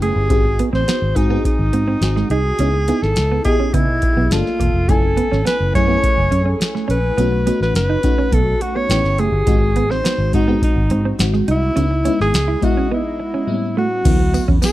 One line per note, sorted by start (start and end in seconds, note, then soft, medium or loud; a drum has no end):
0.00 0.12 F#1 medium
0.00 0.12 A3 medium
0.00 0.18 B3 medium
0.00 0.19 C#4 medium
0.00 0.19 E4 medium
0.00 0.19 G4 medium
0.00 0.70 G#4 medium
0.00 closed hi-hat medium
0.16 0.30 G1 medium
0.29 0.61 G#1 medium
0.29 0.83 C4 medium
0.29 0.84 D#4 medium
0.29 0.84 F#4 medium
0.29 0.84 G#4 medium
0.29 kick loud
0.29 closed hi-hat medium
0.45 muted clean electric guitar stroke soft
0.59 0.69 B3 medium
0.59 closed hi-hat medium
0.73 0.84 A1 medium
0.73 0.83 C4 medium
0.73 1.18 C5 medium
0.73 snare soft
0.88 0.98 B3 medium
0.88 snare loud
0.88 closed hi-hat medium
1.02 1.12 G#1 medium
1.15 1.37 G#2 medium
1.15 1.25 C4 medium
1.15 1.25 D#4 medium
1.15 1.45 D#4 medium
1.15 1.25 F#4 medium
1.15 1.25 G#4 medium
1.15 muted clean electric guitar stroke soft
1.15 kick medium
1.15 closed hi-hat medium
1.29 1.40 B3 medium
1.29 2.01 C4 medium
1.29 2.01 D#4 medium
1.29 2.01 F#4 medium
1.29 2.02 G#4 medium
1.45 2.27 D#4 medium
1.45 muted clean electric guitar stroke soft
1.45 kick medium
1.45 closed hi-hat medium
1.59 1.70 G#1 medium
1.73 1.94 G#2 medium
1.73 1.83 C4 medium
1.73 closed hi-hat medium
1.88 1.98 C4 medium
2.01 2.22 G#1 medium
2.01 2.48 C4 medium
2.01 2.48 D#4 soft
2.01 2.48 F#4 medium
2.01 2.49 G#4 medium
2.01 muted clean electric guitar stroke soft
2.01 snare loud
2.01 closed hi-hat medium
2.16 2.26 G#3 medium
2.16 snare soft
2.30 2.51 C2 medium
2.30 2.41 D#4 medium
2.30 3.04 G#4 medium
2.30 closed hi-hat medium
2.59 2.90 C#2 loud
2.59 2.77 B3 medium
2.59 2.70 C#4 medium
2.59 2.77 D#4 medium
2.59 2.78 E4 medium
2.59 2.78 G#4 medium
2.59 closed hi-hat medium
2.74 muted clean electric guitar stroke soft
2.88 3.24 B3 medium
2.88 2.98 B3 medium
2.88 3.24 D#4 medium
2.88 3.24 E4 medium
2.88 3.24 G#4 medium
2.88 closed hi-hat medium
3.02 3.13 G#1 medium
3.02 3.44 A4 medium
3.02 snare soft
3.16 3.38 C#2 medium
3.16 snare loud
3.16 closed hi-hat medium
3.32 3.41 B3 medium
3.45 4.16 B3 medium
3.45 4.17 E4 medium
3.45 3.52 G4 medium
3.45 3.75 G#4 medium
3.45 4.16 D#5 medium
3.45 muted clean electric guitar stroke soft
3.45 kick medium
3.45 closed hi-hat medium
3.52 4.20 G#4 medium
3.60 3.70 C#4 medium
3.74 3.89 C#3 medium
3.74 3.84 B3 medium
3.74 4.34 E4 medium
3.74 kick medium
3.74 closed hi-hat medium
3.89 3.99 B2 medium
4.02 muted clean electric guitar stroke soft
4.02 kick medium
4.02 closed hi-hat medium
4.17 4.27 B1 medium
4.17 4.27 B3 medium
4.31 4.41 G1 medium
4.31 4.38 A3 soft
4.31 4.78 D4 medium
4.31 4.91 F4 medium
4.31 4.78 F4 medium
4.31 4.78 A4 medium
4.31 snare medium
4.31 closed hi-hat medium
4.38 4.81 A#3 medium
4.47 snare soft
4.60 4.70 E1 medium
4.60 4.70 A#3 medium
4.60 kick medium
4.60 closed hi-hat medium
4.74 4.89 F1 medium
4.89 5.20 F#1 medium
4.89 5.42 A3 medium
4.89 5.42 C#4 medium
4.89 5.43 E4 medium
4.89 5.46 A4 medium
4.89 5.43 G#5 medium
4.89 kick loud
4.89 closed hi-hat medium
5.03 muted clean electric guitar stroke soft
5.17 5.27 B3 medium
5.17 closed hi-hat medium
5.32 5.43 G#1 medium
5.32 5.41 C#4 medium
5.32 snare soft
5.45 5.55 B3 medium
5.45 5.73 B4 medium
5.45 snare loud
5.45 closed hi-hat medium
5.60 5.71 F#1 medium
5.74 5.96 F#2 medium
5.74 5.84 A3 medium
5.74 5.84 C#4 medium
5.74 5.84 E4 medium
5.74 5.84 G#4 medium
5.74 6.59 C#5 loud
5.74 muted clean electric guitar stroke soft
5.74 kick medium
5.74 closed hi-hat medium
5.88 6.60 A3 medium
5.88 5.98 B3 medium
5.88 6.60 C#4 medium
5.88 6.61 E4 medium
5.88 5.96 G#4 medium
5.97 6.64 A4 medium
6.02 muted clean electric guitar stroke soft
6.02 kick medium
6.02 closed hi-hat medium
6.18 6.28 F#1 medium
6.31 6.53 F#2 medium
6.31 6.41 C#4 medium
6.31 closed hi-hat medium
6.46 6.56 C#4 medium
6.60 muted clean electric guitar stroke soft
6.60 snare loud
6.60 closed hi-hat medium
6.75 6.85 A3 medium
6.75 snare soft
6.88 7.10 A#1 medium
6.88 6.98 C#4 medium
6.88 7.58 B4 medium
6.88 closed hi-hat medium
7.18 7.49 B1 loud
7.18 7.36 A3 medium
7.18 7.27 B3 medium
7.18 7.36 C#4 medium
7.18 7.36 D#4 medium
7.18 7.37 F#4 medium
7.18 closed hi-hat medium
7.32 muted clean electric guitar stroke soft
7.46 7.82 A3 medium
7.46 7.56 B3 medium
7.46 7.82 C#4 medium
7.46 7.83 D#4 medium
7.46 7.83 F#4 medium
7.46 closed hi-hat medium
7.61 7.71 A1 medium
7.61 7.75 B4 medium
7.61 snare soft
7.74 7.96 F#1 medium
7.74 8.35 B4 medium
7.74 snare loud
7.74 closed hi-hat medium
7.89 7.99 D#4 medium
8.03 8.75 A3 medium
8.03 8.75 C#4 medium
8.03 8.75 D#4 medium
8.03 8.75 F#4 medium
8.03 muted clean electric guitar stroke soft
8.03 kick medium
8.03 closed hi-hat medium
8.18 8.28 C#4 medium
8.32 8.53 B1 medium
8.32 8.42 B3 medium
8.32 8.63 A4 medium
8.32 kick medium
8.32 closed hi-hat medium
8.61 8.78 F#4 medium
8.61 muted clean electric guitar stroke soft
8.61 closed hi-hat medium
8.76 8.86 B3 medium
8.76 9.21 C#5 loud
8.89 9.00 A1 medium
8.89 9.35 B3 medium
8.89 9.36 C#4 soft
8.89 9.36 E4 medium
8.89 9.36 G4 medium
8.89 snare loud
8.89 closed hi-hat medium
9.04 9.18 G1 medium
9.04 snare soft
9.18 9.29 F#1 medium
9.18 9.29 A3 medium
9.18 9.92 G#4 medium
9.18 closed hi-hat medium
9.32 9.43 G1 medium
9.46 9.90 G#1 medium
9.46 10.00 G#3 medium
9.46 10.00 C4 medium
9.46 10.01 D#4 medium
9.46 10.01 F#4 medium
9.46 kick loud
9.46 closed hi-hat medium
9.62 muted clean electric guitar stroke soft
9.76 9.86 B3 medium
9.76 closed hi-hat medium
9.90 10.00 A1 medium
9.90 10.00 C4 medium
9.90 10.34 C5 loud
9.90 snare soft
10.05 10.14 B3 medium
10.05 snare loud
10.05 closed hi-hat medium
10.18 10.35 G#1 medium
10.33 10.54 G#2 medium
10.33 10.42 G#3 medium
10.33 10.43 C4 medium
10.33 10.60 D#4 medium
10.33 10.43 D#4 medium
10.33 10.43 F#4 medium
10.33 muted clean electric guitar stroke soft
10.33 kick medium
10.33 closed hi-hat medium
10.48 11.18 G#3 medium
10.48 10.57 B3 medium
10.48 11.19 C4 medium
10.48 11.19 D#4 medium
10.48 11.19 F#4 medium
10.62 11.18 D#4 medium
10.62 muted clean electric guitar stroke soft
10.62 kick medium
10.62 closed hi-hat medium
10.76 10.93 G#1 medium
10.90 11.12 G#2 medium
10.90 11.01 C4 medium
10.90 closed hi-hat medium
11.05 11.15 C4 medium
11.19 11.40 G#1 medium
11.19 11.65 G#3 medium
11.19 11.65 C4 medium
11.19 11.65 D#4 medium
11.19 11.66 F#4 medium
11.19 muted clean electric guitar stroke soft
11.19 snare loud
11.19 closed hi-hat medium
11.34 11.43 G#3 medium
11.34 snare soft
11.48 11.69 C2 medium
11.48 11.58 D#4 medium
11.48 12.17 E4 medium
11.48 closed hi-hat medium
11.76 12.08 C#2 medium
11.76 11.94 G#3 medium
11.76 11.95 B3 medium
11.76 11.86 C#4 medium
11.76 11.94 D#4 medium
11.76 11.95 E4 medium
11.76 closed hi-hat medium
11.91 muted clean electric guitar stroke soft
12.05 12.41 G#3 medium
12.05 12.41 B3 medium
12.05 12.15 C#4 medium
12.05 12.41 D#4 medium
12.05 12.41 E4 medium
12.05 closed hi-hat medium
12.20 12.30 G#1 medium
12.20 12.66 G#4 loud
12.20 snare soft
12.34 12.54 C#2 medium
12.34 snare loud
12.34 closed hi-hat medium
12.48 12.58 E4 medium
12.61 13.33 G#3 medium
12.61 13.33 B3 medium
12.61 13.34 E4 medium
12.61 12.92 F#4 medium
12.61 13.34 D#5 medium
12.61 muted clean electric guitar stroke soft
12.61 kick medium
12.61 closed hi-hat medium
12.77 12.87 C#4 medium
12.91 13.01 B3 medium
12.91 13.74 E4 medium
13.20 muted clean electric guitar stroke soft
13.34 13.44 C#4 medium
13.47 13.93 A2 medium
13.47 13.94 G3 medium
13.47 13.94 B3 soft
13.47 13.55 C4 soft
13.47 13.94 E4 medium
13.54 13.97 C#4 medium
13.77 13.87 A3 medium
13.77 14.60 F#4 medium
14.04 14.37 D2 loud
14.04 14.11 E3 soft
14.04 14.58 A3 medium
14.04 14.59 B3 medium
14.04 14.59 E4 medium
14.04 kick loud
14.04 closed hi-hat medium
14.04 crash medium
14.04 tambourine soft
14.11 14.62 F#3 medium
14.20 muted clean electric guitar stroke soft
14.34 14.44 B3 medium
14.34 closed hi-hat medium
14.34 tambourine medium
14.48 14.59 E2 medium
14.48 14.58 C#4 medium
14.48 kick medium
14.62 14.72 B3 medium
14.62 14.72 A4 medium
14.62 snare loud
14.62 closed hi-hat medium
14.62 tambourine medium